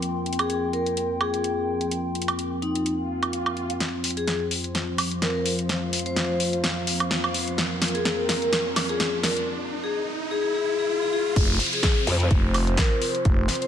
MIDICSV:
0, 0, Header, 1, 10, 480
1, 0, Start_track
1, 0, Key_signature, -4, "minor"
1, 0, Tempo, 472441
1, 25, Time_signature, 4, 2, 24, 8
1, 13893, End_track
2, 0, Start_track
2, 0, Title_t, "Ambient pad"
2, 0, Program_c, 0, 92
2, 0, Note_on_c, 0, 60, 69
2, 0, Note_on_c, 0, 65, 80
2, 0, Note_on_c, 0, 79, 79
2, 0, Note_on_c, 0, 84, 71
2, 4649, Note_off_c, 0, 79, 0
2, 4818, Note_on_c, 0, 77, 69
2, 9623, Note_off_c, 0, 65, 0
2, 9625, Note_off_c, 0, 60, 0
2, 9625, Note_off_c, 0, 77, 0
2, 9626, Note_off_c, 0, 84, 0
2, 11544, Note_on_c, 0, 60, 79
2, 11816, Note_on_c, 0, 65, 80
2, 12447, Note_on_c, 0, 84, 87
2, 13893, Note_off_c, 0, 60, 0
2, 13893, Note_off_c, 0, 65, 0
2, 13893, Note_off_c, 0, 84, 0
2, 13893, End_track
3, 0, Start_track
3, 0, Title_t, "Vibraphone"
3, 0, Program_c, 1, 11
3, 396, Note_on_c, 1, 68, 81
3, 466, Note_off_c, 1, 68, 0
3, 504, Note_on_c, 1, 68, 69
3, 589, Note_off_c, 1, 68, 0
3, 744, Note_on_c, 1, 70, 81
3, 1118, Note_off_c, 1, 70, 0
3, 1224, Note_on_c, 1, 68, 78
3, 1902, Note_off_c, 1, 68, 0
3, 2664, Note_on_c, 1, 63, 77
3, 2749, Note_off_c, 1, 63, 0
3, 2800, Note_on_c, 1, 63, 71
3, 2867, Note_off_c, 1, 63, 0
3, 4237, Note_on_c, 1, 68, 79
3, 4306, Note_off_c, 1, 68, 0
3, 4345, Note_on_c, 1, 68, 71
3, 4430, Note_off_c, 1, 68, 0
3, 5307, Note_on_c, 1, 70, 84
3, 5391, Note_off_c, 1, 70, 0
3, 5440, Note_on_c, 1, 70, 74
3, 5507, Note_off_c, 1, 70, 0
3, 6157, Note_on_c, 1, 72, 83
3, 6638, Note_off_c, 1, 72, 0
3, 8075, Note_on_c, 1, 68, 78
3, 8145, Note_off_c, 1, 68, 0
3, 8183, Note_on_c, 1, 68, 72
3, 8269, Note_off_c, 1, 68, 0
3, 8423, Note_on_c, 1, 70, 77
3, 8647, Note_off_c, 1, 70, 0
3, 9035, Note_on_c, 1, 68, 87
3, 9105, Note_off_c, 1, 68, 0
3, 9140, Note_on_c, 1, 68, 70
3, 9228, Note_off_c, 1, 68, 0
3, 9380, Note_on_c, 1, 70, 83
3, 9605, Note_off_c, 1, 70, 0
3, 9994, Note_on_c, 1, 68, 85
3, 10064, Note_off_c, 1, 68, 0
3, 10476, Note_on_c, 1, 68, 89
3, 10546, Note_off_c, 1, 68, 0
3, 10586, Note_on_c, 1, 68, 87
3, 10671, Note_off_c, 1, 68, 0
3, 10718, Note_on_c, 1, 68, 78
3, 10787, Note_off_c, 1, 68, 0
3, 10826, Note_on_c, 1, 68, 92
3, 10911, Note_off_c, 1, 68, 0
3, 10961, Note_on_c, 1, 68, 78
3, 11028, Note_off_c, 1, 68, 0
3, 11068, Note_on_c, 1, 68, 91
3, 11152, Note_off_c, 1, 68, 0
3, 11200, Note_on_c, 1, 68, 84
3, 11268, Note_off_c, 1, 68, 0
3, 11308, Note_on_c, 1, 68, 94
3, 11391, Note_off_c, 1, 68, 0
3, 11442, Note_on_c, 1, 68, 83
3, 11509, Note_off_c, 1, 68, 0
3, 11919, Note_on_c, 1, 68, 86
3, 11987, Note_off_c, 1, 68, 0
3, 12024, Note_on_c, 1, 68, 73
3, 12109, Note_off_c, 1, 68, 0
3, 12984, Note_on_c, 1, 70, 83
3, 13070, Note_off_c, 1, 70, 0
3, 13113, Note_on_c, 1, 70, 76
3, 13184, Note_off_c, 1, 70, 0
3, 13834, Note_on_c, 1, 72, 94
3, 13893, Note_off_c, 1, 72, 0
3, 13893, End_track
4, 0, Start_track
4, 0, Title_t, "Analog synth pad"
4, 0, Program_c, 2, 89
4, 0, Note_on_c, 2, 53, 72
4, 0, Note_on_c, 2, 65, 63
4, 0, Note_on_c, 2, 70, 80
4, 3824, Note_off_c, 2, 53, 0
4, 3824, Note_off_c, 2, 65, 0
4, 3825, Note_off_c, 2, 70, 0
4, 3863, Note_on_c, 2, 65, 70
4, 3864, Note_on_c, 2, 53, 76
4, 3864, Note_on_c, 2, 72, 85
4, 7666, Note_off_c, 2, 72, 0
4, 7702, Note_on_c, 2, 70, 86
4, 9584, Note_off_c, 2, 53, 0
4, 9584, Note_off_c, 2, 65, 0
4, 9605, Note_off_c, 2, 70, 0
4, 11544, Note_on_c, 2, 65, 71
4, 11545, Note_on_c, 2, 60, 79
4, 11545, Note_on_c, 2, 72, 85
4, 13893, Note_off_c, 2, 60, 0
4, 13893, Note_off_c, 2, 65, 0
4, 13893, Note_off_c, 2, 72, 0
4, 13893, End_track
5, 0, Start_track
5, 0, Title_t, "Wobble bass"
5, 0, Program_c, 3, 39
5, 12265, Note_on_c, 3, 41, 97
5, 12488, Note_off_c, 3, 41, 0
5, 13893, End_track
6, 0, Start_track
6, 0, Title_t, "FM bass"
6, 0, Program_c, 4, 39
6, 11545, Note_on_c, 4, 29, 91
6, 11768, Note_off_c, 4, 29, 0
6, 12505, Note_on_c, 4, 29, 96
6, 12968, Note_off_c, 4, 29, 0
6, 13465, Note_on_c, 4, 29, 92
6, 13688, Note_off_c, 4, 29, 0
6, 13893, End_track
7, 0, Start_track
7, 0, Title_t, "Downlifter"
7, 0, Program_c, 5, 103
7, 11545, Note_on_c, 5, 60, 77
7, 13893, Note_off_c, 5, 60, 0
7, 13893, End_track
8, 0, Start_track
8, 0, Title_t, "Riser"
8, 0, Program_c, 6, 103
8, 3864, Note_on_c, 6, 60, 71
8, 11545, Note_off_c, 6, 60, 0
8, 13893, End_track
9, 0, Start_track
9, 0, Title_t, "Swell"
9, 0, Program_c, 7, 103
9, 2905, Note_on_c, 7, 60, 67
9, 3865, Note_off_c, 7, 60, 0
9, 13893, End_track
10, 0, Start_track
10, 0, Title_t, "Drums"
10, 25, Note_on_c, 9, 42, 62
10, 126, Note_off_c, 9, 42, 0
10, 265, Note_on_c, 9, 42, 46
10, 332, Note_off_c, 9, 42, 0
10, 332, Note_on_c, 9, 42, 61
10, 398, Note_off_c, 9, 42, 0
10, 398, Note_on_c, 9, 42, 48
10, 398, Note_on_c, 9, 76, 79
10, 499, Note_off_c, 9, 42, 0
10, 499, Note_off_c, 9, 76, 0
10, 505, Note_on_c, 9, 42, 59
10, 607, Note_off_c, 9, 42, 0
10, 745, Note_on_c, 9, 42, 34
10, 847, Note_off_c, 9, 42, 0
10, 878, Note_on_c, 9, 42, 49
10, 980, Note_off_c, 9, 42, 0
10, 985, Note_on_c, 9, 42, 64
10, 1087, Note_off_c, 9, 42, 0
10, 1226, Note_on_c, 9, 76, 75
10, 1327, Note_off_c, 9, 76, 0
10, 1359, Note_on_c, 9, 42, 49
10, 1460, Note_off_c, 9, 42, 0
10, 1465, Note_on_c, 9, 42, 57
10, 1567, Note_off_c, 9, 42, 0
10, 1838, Note_on_c, 9, 42, 49
10, 1940, Note_off_c, 9, 42, 0
10, 1945, Note_on_c, 9, 42, 63
10, 2047, Note_off_c, 9, 42, 0
10, 2186, Note_on_c, 9, 42, 45
10, 2252, Note_off_c, 9, 42, 0
10, 2252, Note_on_c, 9, 42, 62
10, 2319, Note_off_c, 9, 42, 0
10, 2319, Note_on_c, 9, 42, 49
10, 2319, Note_on_c, 9, 76, 73
10, 2420, Note_off_c, 9, 42, 0
10, 2420, Note_off_c, 9, 76, 0
10, 2426, Note_on_c, 9, 42, 62
10, 2527, Note_off_c, 9, 42, 0
10, 2665, Note_on_c, 9, 42, 35
10, 2767, Note_off_c, 9, 42, 0
10, 2798, Note_on_c, 9, 42, 52
10, 2900, Note_off_c, 9, 42, 0
10, 2905, Note_on_c, 9, 42, 65
10, 3007, Note_off_c, 9, 42, 0
10, 3278, Note_on_c, 9, 42, 49
10, 3278, Note_on_c, 9, 76, 57
10, 3379, Note_off_c, 9, 42, 0
10, 3379, Note_off_c, 9, 76, 0
10, 3385, Note_on_c, 9, 42, 62
10, 3486, Note_off_c, 9, 42, 0
10, 3517, Note_on_c, 9, 76, 65
10, 3619, Note_off_c, 9, 76, 0
10, 3625, Note_on_c, 9, 42, 36
10, 3726, Note_off_c, 9, 42, 0
10, 3758, Note_on_c, 9, 42, 50
10, 3859, Note_off_c, 9, 42, 0
10, 3865, Note_on_c, 9, 38, 46
10, 3865, Note_on_c, 9, 42, 62
10, 3967, Note_off_c, 9, 38, 0
10, 3967, Note_off_c, 9, 42, 0
10, 4104, Note_on_c, 9, 46, 100
10, 4171, Note_on_c, 9, 42, 65
10, 4206, Note_off_c, 9, 46, 0
10, 4237, Note_off_c, 9, 42, 0
10, 4237, Note_on_c, 9, 42, 49
10, 4338, Note_off_c, 9, 42, 0
10, 4343, Note_on_c, 9, 38, 45
10, 4343, Note_on_c, 9, 42, 60
10, 4445, Note_off_c, 9, 38, 0
10, 4445, Note_off_c, 9, 42, 0
10, 4584, Note_on_c, 9, 46, 97
10, 4685, Note_off_c, 9, 46, 0
10, 4717, Note_on_c, 9, 42, 51
10, 4818, Note_off_c, 9, 42, 0
10, 4824, Note_on_c, 9, 38, 51
10, 4824, Note_on_c, 9, 42, 66
10, 4926, Note_off_c, 9, 38, 0
10, 4926, Note_off_c, 9, 42, 0
10, 5063, Note_on_c, 9, 46, 99
10, 5063, Note_on_c, 9, 76, 70
10, 5164, Note_off_c, 9, 46, 0
10, 5164, Note_off_c, 9, 76, 0
10, 5197, Note_on_c, 9, 42, 49
10, 5298, Note_off_c, 9, 42, 0
10, 5303, Note_on_c, 9, 38, 51
10, 5303, Note_on_c, 9, 42, 62
10, 5405, Note_off_c, 9, 38, 0
10, 5405, Note_off_c, 9, 42, 0
10, 5543, Note_on_c, 9, 46, 103
10, 5645, Note_off_c, 9, 46, 0
10, 5677, Note_on_c, 9, 42, 52
10, 5778, Note_off_c, 9, 42, 0
10, 5784, Note_on_c, 9, 38, 58
10, 5784, Note_on_c, 9, 42, 62
10, 5886, Note_off_c, 9, 38, 0
10, 5886, Note_off_c, 9, 42, 0
10, 6024, Note_on_c, 9, 46, 107
10, 6089, Note_on_c, 9, 42, 62
10, 6125, Note_off_c, 9, 46, 0
10, 6156, Note_off_c, 9, 42, 0
10, 6156, Note_on_c, 9, 42, 51
10, 6258, Note_off_c, 9, 42, 0
10, 6263, Note_on_c, 9, 38, 56
10, 6263, Note_on_c, 9, 42, 63
10, 6365, Note_off_c, 9, 38, 0
10, 6365, Note_off_c, 9, 42, 0
10, 6503, Note_on_c, 9, 46, 99
10, 6604, Note_off_c, 9, 46, 0
10, 6636, Note_on_c, 9, 42, 51
10, 6737, Note_off_c, 9, 42, 0
10, 6743, Note_on_c, 9, 38, 68
10, 6743, Note_on_c, 9, 42, 65
10, 6845, Note_off_c, 9, 38, 0
10, 6845, Note_off_c, 9, 42, 0
10, 6982, Note_on_c, 9, 46, 104
10, 7083, Note_off_c, 9, 46, 0
10, 7114, Note_on_c, 9, 42, 52
10, 7114, Note_on_c, 9, 76, 60
10, 7216, Note_off_c, 9, 42, 0
10, 7216, Note_off_c, 9, 76, 0
10, 7222, Note_on_c, 9, 38, 66
10, 7222, Note_on_c, 9, 42, 62
10, 7323, Note_off_c, 9, 38, 0
10, 7323, Note_off_c, 9, 42, 0
10, 7355, Note_on_c, 9, 76, 68
10, 7457, Note_off_c, 9, 76, 0
10, 7462, Note_on_c, 9, 46, 106
10, 7563, Note_off_c, 9, 46, 0
10, 7595, Note_on_c, 9, 42, 50
10, 7697, Note_off_c, 9, 42, 0
10, 7702, Note_on_c, 9, 38, 69
10, 7702, Note_on_c, 9, 42, 62
10, 7803, Note_off_c, 9, 38, 0
10, 7803, Note_off_c, 9, 42, 0
10, 7941, Note_on_c, 9, 38, 75
10, 7941, Note_on_c, 9, 46, 106
10, 8009, Note_on_c, 9, 42, 63
10, 8043, Note_off_c, 9, 38, 0
10, 8043, Note_off_c, 9, 46, 0
10, 8075, Note_off_c, 9, 42, 0
10, 8075, Note_on_c, 9, 42, 49
10, 8177, Note_off_c, 9, 42, 0
10, 8183, Note_on_c, 9, 38, 73
10, 8183, Note_on_c, 9, 42, 62
10, 8284, Note_off_c, 9, 38, 0
10, 8284, Note_off_c, 9, 42, 0
10, 8422, Note_on_c, 9, 38, 78
10, 8422, Note_on_c, 9, 46, 107
10, 8524, Note_off_c, 9, 38, 0
10, 8524, Note_off_c, 9, 46, 0
10, 8555, Note_on_c, 9, 42, 50
10, 8657, Note_off_c, 9, 42, 0
10, 8662, Note_on_c, 9, 38, 85
10, 8662, Note_on_c, 9, 42, 67
10, 8764, Note_off_c, 9, 38, 0
10, 8764, Note_off_c, 9, 42, 0
10, 8902, Note_on_c, 9, 38, 84
10, 8902, Note_on_c, 9, 46, 111
10, 8902, Note_on_c, 9, 76, 74
10, 9004, Note_off_c, 9, 38, 0
10, 9004, Note_off_c, 9, 46, 0
10, 9004, Note_off_c, 9, 76, 0
10, 9035, Note_on_c, 9, 42, 49
10, 9137, Note_off_c, 9, 42, 0
10, 9143, Note_on_c, 9, 38, 82
10, 9143, Note_on_c, 9, 42, 64
10, 9245, Note_off_c, 9, 38, 0
10, 9245, Note_off_c, 9, 42, 0
10, 9382, Note_on_c, 9, 38, 89
10, 9382, Note_on_c, 9, 46, 112
10, 9484, Note_off_c, 9, 38, 0
10, 9484, Note_off_c, 9, 46, 0
10, 9515, Note_on_c, 9, 42, 52
10, 9617, Note_off_c, 9, 42, 0
10, 11545, Note_on_c, 9, 36, 119
10, 11545, Note_on_c, 9, 42, 68
10, 11545, Note_on_c, 9, 49, 104
10, 11647, Note_off_c, 9, 36, 0
10, 11647, Note_off_c, 9, 42, 0
10, 11647, Note_off_c, 9, 49, 0
10, 11784, Note_on_c, 9, 46, 106
10, 11851, Note_on_c, 9, 42, 66
10, 11886, Note_off_c, 9, 46, 0
10, 11917, Note_off_c, 9, 42, 0
10, 11917, Note_on_c, 9, 42, 56
10, 12019, Note_off_c, 9, 42, 0
10, 12019, Note_on_c, 9, 38, 127
10, 12024, Note_on_c, 9, 42, 67
10, 12025, Note_on_c, 9, 36, 112
10, 12121, Note_off_c, 9, 38, 0
10, 12126, Note_off_c, 9, 42, 0
10, 12127, Note_off_c, 9, 36, 0
10, 12265, Note_on_c, 9, 46, 105
10, 12366, Note_off_c, 9, 46, 0
10, 12396, Note_on_c, 9, 42, 54
10, 12498, Note_off_c, 9, 42, 0
10, 12504, Note_on_c, 9, 42, 69
10, 12505, Note_on_c, 9, 36, 120
10, 12606, Note_off_c, 9, 36, 0
10, 12606, Note_off_c, 9, 42, 0
10, 12744, Note_on_c, 9, 46, 100
10, 12744, Note_on_c, 9, 76, 75
10, 12846, Note_off_c, 9, 46, 0
10, 12846, Note_off_c, 9, 76, 0
10, 12876, Note_on_c, 9, 42, 55
10, 12977, Note_off_c, 9, 42, 0
10, 12979, Note_on_c, 9, 38, 118
10, 12984, Note_on_c, 9, 42, 69
10, 12985, Note_on_c, 9, 36, 116
10, 13080, Note_off_c, 9, 38, 0
10, 13085, Note_off_c, 9, 42, 0
10, 13086, Note_off_c, 9, 36, 0
10, 13224, Note_on_c, 9, 46, 106
10, 13326, Note_off_c, 9, 46, 0
10, 13357, Note_on_c, 9, 42, 55
10, 13458, Note_off_c, 9, 42, 0
10, 13463, Note_on_c, 9, 42, 66
10, 13465, Note_on_c, 9, 36, 120
10, 13565, Note_off_c, 9, 42, 0
10, 13566, Note_off_c, 9, 36, 0
10, 13698, Note_on_c, 9, 38, 37
10, 13703, Note_on_c, 9, 46, 113
10, 13770, Note_on_c, 9, 42, 68
10, 13799, Note_off_c, 9, 38, 0
10, 13804, Note_off_c, 9, 46, 0
10, 13837, Note_off_c, 9, 42, 0
10, 13837, Note_on_c, 9, 42, 54
10, 13893, Note_off_c, 9, 42, 0
10, 13893, End_track
0, 0, End_of_file